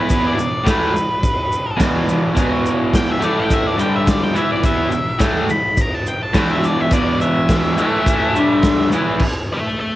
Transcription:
0.00 0.35 E3 medium
0.00 0.37 B3 loud
0.00 0.37 E4 medium
0.00 0.24 B4 loud
0.09 kick loud
0.09 crash medium
0.09 shaker loud
0.27 0.66 D5 medium
0.35 0.59 E2 medium
0.35 0.59 B2 medium
0.35 shaker medium
0.64 0.92 A2 medium
0.64 0.93 E3 loud
0.64 0.93 A3 loud
0.64 kick loud
0.64 snare loud
0.64 crash medium
0.64 shaker loud
0.70 1.78 B4 loud
0.96 shaker medium
1.23 kick loud
1.23 crash medium
1.23 shaker loud
1.52 shaker medium
1.77 2.32 E2 loud
1.77 2.34 B2 loud
1.77 2.34 E3 loud
1.77 kick loud
1.77 snare loud
1.77 crash medium
1.77 shaker medium
2.09 shaker medium
2.34 3.20 E2 medium
2.34 3.19 B2 loud
2.34 3.19 E3 loud
2.34 kick loud
2.34 crash medium
2.34 shaker loud
2.66 shaker medium
2.94 3.08 G5 loud
2.94 kick loud
2.94 snare loud
2.94 crash medium
2.94 shaker loud
3.11 3.24 E5 medium
3.20 3.77 A2 loud
3.20 3.77 E3 loud
3.20 3.78 A3 loud
3.20 3.37 D5 medium
3.20 shaker medium
3.40 3.52 G5 loud
3.50 3.67 E5 medium
3.50 kick loud
3.50 crash medium
3.50 shaker loud
3.67 3.80 D5 medium
3.76 4.34 G2 loud
3.76 4.33 D3 loud
3.76 4.33 G3 loud
3.76 shaker medium
3.80 3.93 G5 medium
3.96 4.09 E5 loud
4.07 4.22 D5 medium
4.07 kick loud
4.07 snare loud
4.07 crash medium
4.07 shaker loud
4.23 4.36 G5 medium
4.33 4.90 E3 medium
4.33 4.91 B3 medium
4.33 4.92 E4 medium
4.33 4.50 E5 medium
4.33 shaker medium
4.52 4.65 D5 medium
4.63 5.20 E5 loud
4.63 kick loud
4.63 crash medium
4.63 shaker loud
4.90 5.14 E2 medium
4.90 5.14 B2 medium
4.90 shaker medium
5.18 5.48 A2 medium
5.18 5.48 E3 medium
5.18 5.49 A3 loud
5.18 kick loud
5.18 snare loud
5.18 crash medium
5.18 shaker loud
5.49 5.78 B5 medium
5.49 shaker medium
5.77 kick loud
5.77 crash medium
5.77 shaker loud
5.81 5.94 A#5 medium
5.94 6.07 A5 loud
6.07 6.21 G5 medium
6.07 shaker medium
6.23 6.38 A5 loud
6.34 6.90 E2 loud
6.34 6.91 B2 loud
6.34 6.91 E3 loud
6.34 kick loud
6.34 snare loud
6.34 crash medium
6.34 shaker medium
6.38 6.51 G5 loud
6.52 6.65 E5 loud
6.64 6.81 D5 loud
6.64 shaker medium
6.81 6.93 E5 loud
6.91 7.77 E2 medium
6.91 7.78 B2 loud
6.91 7.77 E3 loud
6.91 7.21 D5 medium
6.91 kick loud
6.91 crash medium
6.91 shaker medium
7.21 8.89 E5 loud
7.21 shaker medium
7.49 kick loud
7.49 snare loud
7.49 crash medium
7.49 shaker medium
7.78 8.34 A2 loud
7.78 8.35 E3 loud
7.78 8.35 A3 loud
7.78 shaker medium
8.06 kick loud
8.06 crash medium
8.06 shaker medium
8.34 8.91 G2 medium
8.34 8.92 D3 loud
8.34 8.92 G3 medium
8.34 shaker medium
8.63 kick loud
8.63 snare loud
8.63 crash medium
8.63 shaker medium
8.92 9.20 E3 medium
8.92 9.21 B3 medium
8.92 9.21 E4 medium
8.92 shaker medium
9.19 kick loud
9.19 crash loud
9.53 9.79 E5 medium
9.53 9.80 A5 medium
9.80 9.96 E5 medium
9.80 9.96 A5 medium

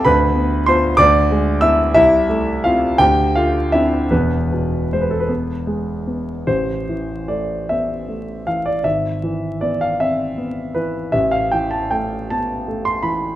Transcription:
0.05 0.97 D2 medium
0.05 0.64 B4 medium
0.05 0.68 B5 loud
0.35 0.67 B3 medium
0.66 0.97 B3 medium
0.66 0.97 F4 medium
0.66 0.98 C5 medium
0.66 0.99 C6 loud
0.97 1.92 D2 medium
0.97 1.59 D5 loud
0.97 1.62 D6 loud
1.31 1.83 G#3 medium
1.61 1.92 B3 soft
1.61 1.92 E4 medium
1.61 1.93 E5 medium
1.61 1.95 E6 loud
1.94 2.97 C2 medium
1.94 2.61 E4 medium
1.94 2.64 E5 loud
2.29 2.86 A3 medium
2.64 2.97 C4 soft
2.64 2.97 E4 medium
2.64 2.98 F4 medium
2.64 3.00 F5 medium
2.98 4.07 D2 medium
2.98 3.33 G4 medium
2.98 3.35 G5 loud
3.35 3.96 A3 soft
3.35 3.71 F4 medium
3.35 3.73 F5 medium
3.72 4.08 C4 soft
3.72 4.08 D4 medium
3.72 4.09 E4 medium
3.72 4.11 E5 medium
4.11 6.43 E1 medium
4.11 6.43 E2 medium
4.11 4.89 B3 medium
4.11 4.93 B4 medium
4.52 5.15 B2 soft
4.93 5.53 G#3 soft
4.93 5.02 C5 medium
5.01 5.11 B4 medium
5.11 5.20 A4 medium
5.20 5.29 B4 medium
5.29 5.90 B3 medium
5.67 6.30 G#3 soft
6.07 6.47 B3 soft
6.47 8.81 A1 medium
6.47 7.29 C5 medium
6.89 7.53 E3 soft
7.28 7.92 A3 soft
7.28 7.68 D5 medium
7.69 8.09 B3 soft
7.69 8.47 E5 medium
8.09 8.70 A3 soft
8.47 8.85 E3 soft
8.47 8.66 F5 medium
8.66 8.85 D5 medium
8.84 11.09 G#1 soft
8.84 9.60 E5 medium
9.23 9.84 E3 soft
9.61 10.23 B3 soft
9.61 9.80 D5 medium
9.81 10.00 F5 medium
10.00 10.38 C4 soft
10.00 10.75 E5 medium
10.38 10.98 B3 soft
10.75 11.13 E3 soft
10.75 11.12 B4 medium
11.12 13.36 A1 medium
11.12 11.32 E5 medium
11.31 11.51 F5 medium
11.52 12.13 E3 soft
11.52 11.71 G5 medium
11.71 11.90 A5 medium
11.91 12.51 A3 soft
11.91 12.28 G5 medium
12.30 12.67 B3 soft
12.30 12.86 A5 medium
12.68 13.27 A3 soft
12.85 13.04 C6 medium
13.03 13.36 E3 soft
13.03 13.36 B5 medium

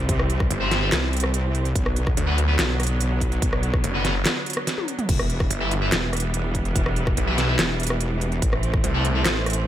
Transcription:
0.00 1.71 E3 medium
0.00 1.72 G3 medium
0.00 1.71 C4 medium
0.09 0.49 C2 loud
0.09 kick loud
0.09 closed hi-hat medium
0.19 cross-stick medium
0.30 closed hi-hat medium
0.40 kick loud
0.40 cross-stick medium
0.51 0.91 G1 loud
0.51 closed hi-hat medium
0.61 0.79 C4 medium
0.61 0.79 G4 medium
0.61 0.79 C5 medium
0.71 snare medium
0.71 closed hi-hat medium
0.82 0.88 C4 medium
0.82 0.88 G4 medium
0.82 0.88 C5 loud
0.92 1.74 C2 loud
0.92 snare loud
0.92 clap medium
0.92 closed hi-hat medium
1.13 closed hi-hat soft
1.17 closed hi-hat medium
1.20 cross-stick medium
1.20 closed hi-hat medium
1.34 closed hi-hat medium
1.55 closed hi-hat medium
1.65 closed hi-hat soft
1.75 2.16 B1 loud
1.75 5.05 D3 medium
1.75 5.06 F#3 medium
1.75 5.06 B3 medium
1.75 kick loud
1.75 closed hi-hat medium
1.86 cross-stick medium
1.96 closed hi-hat medium
2.07 kick loud
2.07 cross-stick medium
2.17 2.57 D2 loud
2.17 closed hi-hat medium
2.27 2.38 B3 medium
2.27 2.38 F#4 medium
2.27 2.38 B4 medium
2.38 closed hi-hat medium
2.48 2.55 B3 medium
2.48 2.55 F#4 medium
2.48 2.55 B4 medium
2.59 3.41 B1 loud
2.59 snare loud
2.59 clap medium
2.59 closed hi-hat medium
2.80 cross-stick medium
2.80 closed hi-hat medium
2.83 closed hi-hat medium
2.87 closed hi-hat medium
3.01 closed hi-hat medium
3.21 kick medium
3.21 closed hi-hat medium
3.32 closed hi-hat soft
3.42 3.82 B1 loud
3.42 kick loud
3.42 closed hi-hat medium
3.53 cross-stick medium
3.63 closed hi-hat medium
3.74 kick loud
3.74 cross-stick medium
3.84 4.24 F#1 loud
3.84 closed hi-hat medium
3.94 4.13 B3 medium
3.94 4.13 F#4 medium
3.94 4.13 B4 medium
4.05 snare medium
4.05 closed hi-hat medium
4.26 snare loud
4.26 clap medium
4.26 closed hi-hat medium
4.46 closed hi-hat medium
4.50 closed hi-hat medium
4.53 cross-stick medium
4.53 closed hi-hat medium
4.67 snare medium
4.67 closed hi-hat medium
4.78 high tom medium
4.88 closed hi-hat medium
4.99 closed hi-hat soft
4.99 mid tom medium
5.09 5.49 E1 loud
5.09 9.67 E3 medium
5.09 8.39 G3 medium
5.09 8.39 B3 medium
5.09 kick loud
5.09 closed hi-hat medium
5.09 crash medium
5.19 cross-stick medium
5.30 closed hi-hat medium
5.40 kick loud
5.40 cross-stick medium
5.51 5.91 G1 loud
5.51 closed hi-hat medium
5.61 5.72 E4 medium
5.61 5.72 B4 medium
5.61 5.72 E5 loud
5.71 closed hi-hat medium
5.82 5.89 E4 medium
5.82 5.89 B4 medium
5.82 5.89 E5 medium
5.92 6.74 E1 loud
5.92 snare loud
5.92 clap medium
5.92 closed hi-hat medium
6.13 cross-stick medium
6.13 closed hi-hat medium
6.17 closed hi-hat medium
6.20 closed hi-hat medium
6.34 closed hi-hat medium
6.55 kick medium
6.55 closed hi-hat medium
6.65 closed hi-hat soft
6.76 7.16 E1 loud
6.76 kick loud
6.76 closed hi-hat medium
6.86 cross-stick medium
6.96 closed hi-hat medium
7.07 kick loud
7.07 cross-stick medium
7.17 7.57 B1 loud
7.17 closed hi-hat medium
7.27 7.46 E4 medium
7.27 7.46 B4 medium
7.27 7.46 E5 medium
7.38 snare medium
7.38 closed hi-hat medium
7.48 7.55 E4 medium
7.48 7.55 B4 medium
7.48 7.55 E5 medium
7.59 8.41 E1 loud
7.59 snare loud
7.59 clap loud
7.59 closed hi-hat medium
7.80 closed hi-hat medium
7.83 closed hi-hat medium
7.87 cross-stick medium
7.87 closed hi-hat medium
8.01 closed hi-hat medium
8.21 closed hi-hat medium
8.32 closed hi-hat soft
8.42 8.82 A1 loud
8.42 9.67 A3 medium
8.42 9.67 C4 medium
8.42 kick loud
8.42 closed hi-hat medium
8.53 cross-stick medium
8.63 closed hi-hat medium
8.74 kick loud
8.74 cross-stick medium
8.84 9.24 C2 loud
8.84 closed hi-hat medium
8.94 9.05 A3 medium
8.94 9.05 E4 medium
8.94 9.05 A4 medium
9.05 closed hi-hat medium
9.15 9.22 A3 medium
9.15 9.22 E4 medium
9.15 9.22 A4 medium
9.26 9.67 A1 loud
9.26 snare loud
9.26 clap loud
9.26 closed hi-hat medium
9.46 cross-stick medium
9.46 closed hi-hat soft
9.50 closed hi-hat medium
9.53 closed hi-hat medium

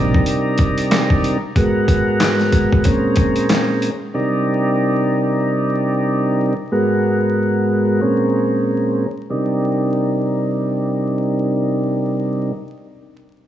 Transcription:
0.00 0.19 A#1 loud
0.00 1.38 C3 medium
0.00 1.38 G3 medium
0.00 1.38 D4 medium
0.00 1.38 D#4 medium
0.00 1.38 A#4 loud
0.15 kick medium
0.26 closed hi-hat medium
0.58 kick loud
0.58 closed hi-hat medium
0.78 closed hi-hat medium
0.91 snare loud
0.91 clap medium
0.91 closed hi-hat medium
1.10 kick medium
1.24 closed hi-hat medium
1.55 2.85 G#2 loud
1.55 2.83 G#3 medium
1.55 2.85 B3 medium
1.55 2.85 F#4 medium
1.55 2.84 A#4 loud
1.55 kick loud
1.55 closed hi-hat medium
1.88 kick medium
1.88 closed hi-hat medium
2.20 snare loud
2.20 clap loud
2.20 closed hi-hat medium
2.40 snare soft
2.52 kick medium
2.52 closed hi-hat medium
2.72 kick medium
2.84 3.90 A#2 medium
2.84 3.90 G#3 medium
2.84 3.90 C4 medium
2.84 3.90 C#4 medium
2.84 3.90 A#4 loud
2.84 kick medium
2.84 closed hi-hat medium
3.16 kick loud
3.16 closed hi-hat medium
3.36 closed hi-hat medium
3.49 snare loud
3.49 clap medium
3.49 closed hi-hat medium
3.82 closed hi-hat medium
4.14 6.54 C3 medium
4.14 6.54 G3 medium
4.14 6.54 D4 medium
4.14 6.54 D#4 medium
4.14 6.54 A#4 loud
6.72 8.01 G#2 loud
6.72 8.00 G#3 medium
6.72 8.01 B3 medium
6.72 8.01 F#4 medium
6.72 8.00 A#4 loud
8.01 9.06 A#2 medium
8.01 9.06 G#3 medium
8.01 9.06 C4 medium
8.01 9.07 C#4 medium
8.01 9.07 A#4 loud
9.30 12.52 C3 medium
9.30 12.52 G3 medium
9.30 12.52 D4 medium
9.30 12.52 D#4 medium
9.30 12.52 A#4 medium

